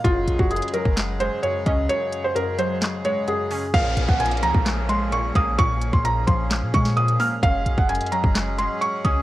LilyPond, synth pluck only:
\new Staff \with { instrumentName = "Synth pluck" } { \clef bass \time 4/4 \key bes \minor \tempo 4 = 130 ges,4 ges,8 ges4 aes8 ges,8 des'8 | ges,4 ges,8 ges4 aes8 ges,8 des'8 | bes,4 bes,8 f4 aes8 bes,8 bes8 | bes,4 bes,8 f4 aes8 bes,8 bes8 |
ges,4 ges,8 ges4 aes4 des'8 | }